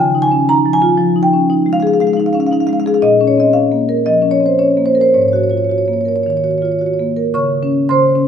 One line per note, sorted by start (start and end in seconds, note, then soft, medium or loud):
0.00 0.96 C#3 medium
0.00 0.21 G5 medium
0.15 0.41 D#4 medium
0.22 0.46 G#5 loud
0.32 0.48 C#4 medium
0.49 0.76 D#4 medium
0.49 0.73 A#5 loud
0.66 0.92 F3 medium
0.73 1.22 G#5 loud
0.82 0.99 F4 medium
0.97 1.97 F3 medium
1.16 1.43 D#4 medium
1.23 1.72 G5 medium
1.33 1.50 C#4 soft
1.50 1.77 D#4 medium
1.66 1.94 G#3 medium
1.73 1.80 F5 medium
1.80 2.10 G#4 medium
1.80 1.87 F5 medium
1.87 1.94 F5 medium
1.94 2.00 F5 medium
2.00 2.28 G#3 medium
2.00 2.07 F5 medium
2.07 2.13 F5 medium
2.13 2.45 D#4 medium
2.13 2.20 F5 medium
2.20 2.26 F5 medium
2.26 2.33 F5 medium
2.33 2.52 C#4 medium
2.33 2.40 F5 medium
2.40 2.47 F5 medium
2.47 2.53 F5 medium
2.52 2.79 D#4 medium
2.52 2.60 F5 medium
2.60 2.67 F5 medium
2.67 2.96 G#3 medium
2.67 2.73 F5 medium
2.73 2.80 F5 medium
2.80 2.87 F5 medium
2.86 3.03 G#4 medium
2.86 2.94 F5 medium
2.94 2.98 F5 medium
3.02 4.04 A#2 medium
3.02 3.27 D#5 medium
3.21 3.48 C#4 medium
3.27 3.41 C#5 medium
3.38 3.55 C4 medium
3.38 3.53 D#5 medium
3.53 3.82 C#4 medium
3.53 4.04 F5 medium
3.72 4.00 A#3 medium
3.89 4.17 A#4 medium
4.06 4.35 F3 medium
4.06 4.32 D#5 medium
4.22 4.52 C#4 soft
4.31 4.46 C#5 medium
4.40 4.59 C4 soft
4.46 4.60 C5 medium
4.59 4.88 C#4 medium
4.59 4.86 C#5 medium
4.77 5.07 A#3 soft
4.86 5.00 C5 medium
4.95 5.14 A#4 medium
5.01 5.15 C5 medium
5.14 6.22 G#2 medium
5.14 5.21 C#5 medium
5.21 5.28 C#5 soft
5.28 5.36 C#5 medium
5.33 5.62 F#4 medium
5.33 5.43 C#5 soft
5.43 5.49 C#5 soft
5.49 5.70 F4 soft
5.49 5.57 C#5 soft
5.57 5.64 C#5 medium
5.64 5.71 C#5 soft
5.69 5.99 F#4 medium
5.69 5.78 C#5 medium
5.78 5.85 C#5 soft
5.85 6.18 A#3 soft
5.85 5.93 C#5 soft
5.93 6.01 C#5 soft
6.01 6.08 C#5 medium
6.05 6.36 A#4 soft
6.05 6.16 C#5 soft
6.16 6.23 C#5 medium
6.23 6.55 D#3 soft
6.23 6.30 C#5 soft
6.30 6.37 C#5 soft
6.37 6.44 C#5 soft
6.44 6.73 F#4 soft
6.44 6.51 C#5 medium
6.51 6.58 C#5 soft
6.58 6.65 C#5 soft
6.62 6.81 F4 soft
6.62 6.72 C#5 soft
6.72 6.79 C#5 medium
6.79 7.10 F#4 soft
6.79 6.86 C#5 soft
6.86 6.94 C#5 medium
6.94 7.04 C#5 soft
6.99 7.29 A#3 medium
7.17 7.35 A#4 medium
7.34 7.88 C#3 medium
7.34 7.85 C#5 medium
7.34 7.86 C#6 medium
7.63 8.14 C#4 medium
7.89 8.28 C#3 medium
7.89 8.28 C5 medium
7.89 8.28 C6 medium
8.16 8.28 C#4 medium